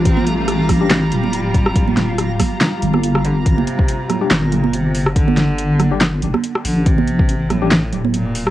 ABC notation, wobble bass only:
X:1
M:4/4
L:1/16
Q:"Swing 16ths" 1/4=141
K:Gm
V:1 name="Wobble bass" clef=bass
A,,,8- A,,,2 D,,,6- | D,,,6 z4 G,,,6 | G,,,2 z6 G,,,8- | G,,,8- G,,,2 G,,, z3 A,,,2- |
A,,,8- A,,,2 D,,,6 |]